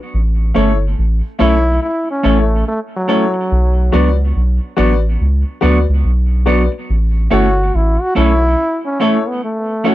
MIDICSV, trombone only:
0, 0, Header, 1, 2, 480
1, 0, Start_track
1, 0, Tempo, 845070
1, 70, Time_signature, 4, 2, 24, 8
1, 5650, End_track
2, 0, Start_track
2, 0, Title_t, "Trombone"
2, 0, Program_c, 0, 57
2, 799, Note_on_c, 0, 64, 112
2, 1019, Note_off_c, 0, 64, 0
2, 1038, Note_on_c, 0, 64, 98
2, 1184, Note_off_c, 0, 64, 0
2, 1199, Note_on_c, 0, 61, 98
2, 1361, Note_on_c, 0, 57, 94
2, 1370, Note_off_c, 0, 61, 0
2, 1516, Note_off_c, 0, 57, 0
2, 1524, Note_on_c, 0, 57, 87
2, 1593, Note_off_c, 0, 57, 0
2, 1683, Note_on_c, 0, 54, 92
2, 2374, Note_off_c, 0, 54, 0
2, 4164, Note_on_c, 0, 66, 112
2, 4405, Note_on_c, 0, 64, 95
2, 4414, Note_off_c, 0, 66, 0
2, 4552, Note_on_c, 0, 66, 107
2, 4561, Note_off_c, 0, 64, 0
2, 4639, Note_off_c, 0, 66, 0
2, 4643, Note_on_c, 0, 64, 116
2, 5001, Note_off_c, 0, 64, 0
2, 5031, Note_on_c, 0, 61, 94
2, 5122, Note_on_c, 0, 57, 87
2, 5131, Note_off_c, 0, 61, 0
2, 5273, Note_on_c, 0, 59, 83
2, 5282, Note_off_c, 0, 57, 0
2, 5360, Note_off_c, 0, 59, 0
2, 5366, Note_on_c, 0, 57, 87
2, 5605, Note_on_c, 0, 66, 109
2, 5613, Note_off_c, 0, 57, 0
2, 5650, Note_off_c, 0, 66, 0
2, 5650, End_track
0, 0, End_of_file